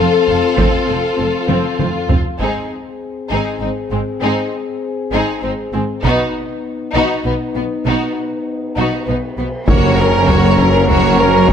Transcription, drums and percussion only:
0.58 taiko
1.49 taiko high
1.79 taiko low-mid
2.09 taiko low
2.39 taiko
6.03 taiko
9.68 taiko, tam-tam
10.27 taiko low
10.58 taiko
10.88 taiko low
11.49 taiko

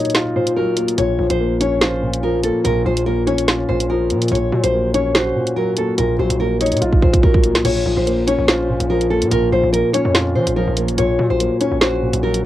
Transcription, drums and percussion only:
0.05 closed hi-hat
0.10 closed hi-hat
0.15 snare, closed hi-hat
0.47 closed hi-hat
0.77 closed hi-hat
0.88 closed hi-hat
0.98 closed hi-hat
1.30 closed hi-hat
1.61 closed hi-hat
1.81 snare, closed hi-hat
2.13 closed hi-hat
2.43 closed hi-hat
2.65 closed hi-hat
2.97 closed hi-hat
3.27 closed hi-hat
3.38 closed hi-hat
3.48 snare, closed hi-hat
3.80 closed hi-hat
4.10 closed hi-hat
4.22 closed hi-hat
4.28 closed hi-hat
4.35 closed hi-hat
4.64 closed hi-hat
4.94 closed hi-hat
5.15 snare, closed hi-hat
5.47 closed hi-hat
5.77 closed hi-hat
5.98 closed hi-hat
6.30 closed hi-hat
6.61 closed hi-hat
6.66 closed hi-hat
6.72 closed hi-hat
6.77 closed hi-hat
6.82 closed hi-hat
6.93 kick
7.02 kick
7.13 kick, closed hi-hat
7.23 kick
7.34 kick
7.44 closed hi-hat
7.55 snare, closed hi-hat
7.65 closed hi-hat, crash
8.07 closed hi-hat
8.28 closed hi-hat
8.48 snare, closed hi-hat
8.80 closed hi-hat
9.01 closed hi-hat
9.22 closed hi-hat
9.32 closed hi-hat
9.74 closed hi-hat
9.94 closed hi-hat
10.15 snare, closed hi-hat
10.47 closed hi-hat
10.77 closed hi-hat
10.88 closed hi-hat
10.98 closed hi-hat
11.40 closed hi-hat
11.61 closed hi-hat
11.81 snare, closed hi-hat
12.13 closed hi-hat
12.34 closed hi-hat

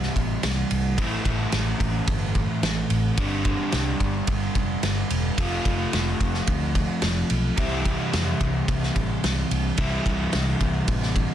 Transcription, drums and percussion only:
0.03 snare
0.16 kick, ride
0.43 snare, ride
0.71 ride
0.98 kick, ride
1.25 kick, ride
1.52 snare, ride
1.80 kick, ride
2.07 kick, ride
2.35 kick, ride
2.63 snare, ride
2.90 ride
3.17 kick, ride
3.45 kick, ride
3.72 snare, ride
4.00 kick, ride
4.27 kick, ride
4.55 kick, ride
4.83 snare, ride
5.10 ride
5.38 kick, ride
5.65 kick, ride
5.93 snare, ride
6.20 kick, ride
6.34 snare
6.47 kick, ride
6.75 kick, ride
7.02 snare, ride
7.30 ride
7.57 kick, ride
7.85 kick, ride
8.13 snare, ride
8.41 kick, ride
8.68 kick, ride
8.83 snare
8.96 kick, ride
9.24 snare, ride
9.51 ride
9.77 kick, ride
10.06 kick, ride
10.33 snare, ride
10.60 kick, ride
10.88 kick, ride
11.02 snare
11.16 kick, ride

